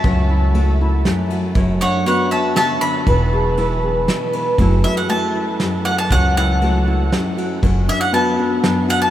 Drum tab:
RD |x-x-xx|x-x-xx|x-x-xx|x-x-xx|
SD |----o-|----o-|----o-|----o-|
BD |o-----|o-----|o-----|o-----|

RD |x-x-xx|x-x-xx|
SD |----o-|----o-|
BD |o-----|o-----|